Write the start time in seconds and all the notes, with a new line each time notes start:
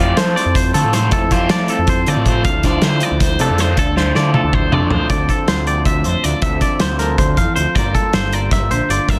Already playing: F2 F3 C4 E4 D5
0.00 F3 A3 C4 F4 G4
0.17 F3 A3 C4 F4 A4 C5, snare, closed hi-hat
0.36 C4 D5, closed hi-hat
0.46 F2
0.55 C5, kick, closed hi-hat
0.74 D3 F3 A3 C4 F4 A4, closed hi-hat
0.84 A2
0.92 C3 F3 A3 C4 F4 C5, snare, closed hi-hat
1.11 F2 F3 E4 A4, kick, closed hi-hat
1.31 F3 A3 C4 F4 G4 C5, kick, snare, closed hi-hat
1.49 F3 A3 C4 F4 A4 D5, snare, closed hi-hat
1.68 C4 A4, closed hi-hat
1.79 F2
1.87 C5, kick, closed hi-hat
2.06 D3 F3 A3 C4 F4 A4 D5, closed hi-hat
2.16 A2
2.26 C3 F3 A3 C4 F4 C5, kick, closed hi-hat
2.45 D2 D3 F3 D4 F5, kick, closed hi-hat
2.49 E4 A4
2.63 D3 A3 D4 F4 C5 D5, kick, snare, closed hi-hat
2.82 D3 A3 D4 F4 C5, snare, closed hi-hat
2.86 E4
3.00 F3 D5, closed hi-hat
3.11 D2
3.20 C5, kick, snare, closed hi-hat
3.39 C3 D3 A3 D4 F4 A4, closed hi-hat
3.50 F2
3.58 A2 D3 A3 D4 F4 C5, snare, closed hi-hat
3.77 D2 D3 D4 A4, kick, closed hi-hat
3.96 D3 A3 D4 F4 C5, snare
4.15 D3 A3 D4 E4 F4 D5, snare
4.34 F3 A4, high tom
4.44 D2
4.53 C5, kick, mid tom
4.72 C3 D3 A3 D4 F4 A4 D5, mid tom
4.82 F2
4.91 A2 D3 A3 D4 F4 C5, floor tom
5.10 D2 D3 C4 F4 A4 D5, kick, closed hi-hat
5.29 C4 A4, kick, closed hi-hat
5.48 D2 F3 F4 C5, snare, closed hi-hat
5.67 G4 D5, closed hi-hat
5.77 A4
5.85 D2 E5, kick, closed hi-hat
6.04 F2 A2 C5, closed hi-hat
6.24 D2 F4 D5, closed hi-hat
6.42 D2 D3 C4 F4 A4 E5, kick, closed hi-hat
6.61 C4 D5, kick, closed hi-hat
6.80 D2 F3 F4 C5, snare, closed hi-hat
6.99 A4 A#4, snare, closed hi-hat
7.18 D2 D3 C5, kick, closed hi-hat
7.37 F2 E3 F5, kick, closed hi-hat
7.56 D2 F3 C5, closed hi-hat
7.75 G1 G2 A#3 F4 A#4 D5, kick, closed hi-hat
7.95 A#3 A4, kick, closed hi-hat
8.13 G1 G3 F4 C5, snare, closed hi-hat
8.33 A#4 D5, closed hi-hat
8.51 G1 E5, kick, snare, closed hi-hat
8.71 A#1 D3 C5, closed hi-hat
8.89 G1 F4 D5, closed hi-hat
9.08 G1 G2 A#3 F4 A#4 E5, kick, closed hi-hat